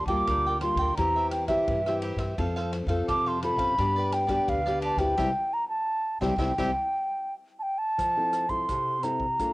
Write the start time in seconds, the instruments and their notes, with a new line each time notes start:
Already playing: nylon-string guitar D3
0.06 upright bass D2, nylon-string guitar G3 A#3 F4, cavaquinho A#4 D5 G5, flute D6, kick, ride
0.27 upright bass D2, nylon-string guitar D3, cavaquinho F4 A#4 D5 G5, kick, cross-stick, ride
0.46 cavaquinho A#4 D5 G5
0.61 nylon-string guitar G3 A#3 F4, flute C6, cross-stick, ride
0.75 upright bass D2, cavaquinho G5, kick, ride
0.80 cavaquinho A#4 D5
0.97 upright bass E2, nylon-string guitar E3 C4 E4 G4, cavaquinho E4 G4 C5 E5, flute A#5, kick, cross-stick, ride
1.16 cavaquinho G4 C5 E5
1.31 flute G5, muted cavaquinho stroke, cross-stick, ride
1.48 nylon-string guitar C4 E4 G4, cavaquinho G4 C5 E5, flute E5, kick, cross-stick, ride
1.68 upright bass G2, nylon-string guitar E3, kick, ride
1.86 nylon-string guitar C4 E4 G4, cavaquinho G4 C5 E5, cross-stick
2.02 cavaquinho E4 G4 C5 E5, ride
2.16 upright bass G2, cavaquinho C5 E5, kick, cross-stick, ride
2.21 cavaquinho G4
2.38 upright bass F2, nylon-string guitar F3 C4 F4 A4, cavaquinho F4 A4 C5 F5, kick, ride
2.56 cavaquinho A4 C5 F5, cross-stick
2.72 muted cavaquinho stroke, cross-stick, ride
2.87 upright bass F2, nylon-string guitar C4 F4 A4, cavaquinho A4 C5 F5, kick, ride
3.08 upright bass F2, nylon-string guitar C3, cavaquinho F4 A4 C5 F5, flute D6, kick, cross-stick, ride
3.26 cavaquinho A4 C5 F5, flute C6
3.43 nylon-string guitar C4 F4 A4, flute B5, cross-stick, ride
3.56 upright bass F#2, cavaquinho C5 F5, kick, ride
3.60 cavaquinho A4
3.78 upright bass G2, nylon-string guitar G3 B3 D4 G4, cavaquinho D4 G4 B4 D5, kick, cross-stick, ride
3.96 cavaquinho G4 B4 D5
4.12 flute G5, muted cavaquinho stroke, cross-stick, ride
4.27 nylon-string guitar B3 D4 G4, cavaquinho G4 B4 D5, kick, cross-stick, ride
4.48 upright bass D2, nylon-string guitar D3, flute F5, kick, ride
4.66 nylon-string guitar B3 D4 G4, cavaquinho G4 B4 D5, cross-stick
4.82 cavaquinho D4 G4 B4 D5, flute A5, ride
4.96 upright bass D2, nylon-string guitar C4 E4 G4, cavaquinho B4 D5, flute G5, kick, cross-stick, ride
5.18 upright bass C2, nylon-string guitar G3 C4 E4, cavaquinho G4 C5 E5, kick, snare
5.54 flute A#5
5.69 flute A5
6.21 upright bass C2, nylon-string guitar G3 C4 E4, cavaquinho G4 C5 E5, flute G5, kick, snare
6.36 upright bass C2, nylon-string guitar G3 C4 E4, cavaquinho G4 C5 E5, kick, snare
6.58 upright bass C2, nylon-string guitar G3 C4 E4, cavaquinho G4 C5 E5, kick, snare
7.59 flute G5 A5
7.78 flute A5
7.98 nylon-string guitar F3, kick, cross-stick, closed hi-hat
8.17 nylon-string guitar C4 E4 A4
8.33 cross-stick, closed hi-hat
8.49 nylon-string guitar C4 E4 A4, flute C6, kick, closed hi-hat
8.69 nylon-string guitar C3, kick, cross-stick, closed hi-hat
9.03 nylon-string guitar C4 E4 A4, flute A#5, cross-stick, closed hi-hat
9.20 kick
9.39 nylon-string guitar A#3 D4 F4 A4, kick, cross-stick, closed hi-hat